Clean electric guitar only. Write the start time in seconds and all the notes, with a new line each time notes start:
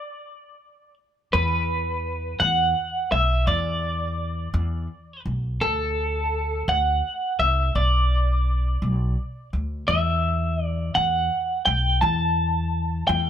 Already playing: D5
1.33 B4
2.40 F#5
3.12 E5
3.48 D5
5.61 A4
6.69 F#5
7.40 E5
7.76 D5
9.88 E5
10.65 D5
10.95 F#5
11.66 G5
12.01 A5
13.08 G5